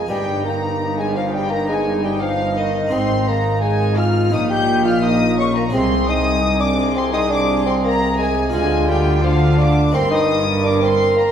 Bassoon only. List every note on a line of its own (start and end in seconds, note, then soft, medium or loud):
0.09 0.47 G3 loud
0.45 1.00 A#3 medium
0.99 1.16 G#3 loud
1.15 1.35 F3 medium
1.34 1.50 G3 medium
1.51 1.68 A#3 loud
1.69 2.03 G#3 loud
2.04 2.23 G3 medium
2.21 2.59 F3 medium
2.58 2.93 D#3 medium
2.92 3.29 C4 loud
3.28 3.63 A#3 medium
3.62 3.99 G#3 medium
3.97 4.34 F4 loud
4.32 4.49 D#4 loud
4.50 4.84 G4 loud
4.85 5.04 F4 loud
5.03 5.40 D#4 loud
5.38 5.56 C#4 medium
5.57 5.64 A#3 loud
5.74 6.10 C4 loud
6.09 6.62 D#4 loud
6.60 6.95 D4 loud
6.96 7.12 C4 loud
7.13 7.29 D#4 loud
7.30 7.65 D4 loud
7.66 7.83 C4 loud
7.84 8.18 A#3 loud
8.18 8.53 G#3 medium
8.54 8.88 G#3 loud
8.88 9.23 G3 loud
9.24 9.60 F3 medium
9.58 9.95 D4 loud
9.93 10.11 C4 loud
10.11 10.45 D#4 loud
10.64 10.83 D4 loud
10.82 11.15 C4 loud
11.16 11.24 A#3 loud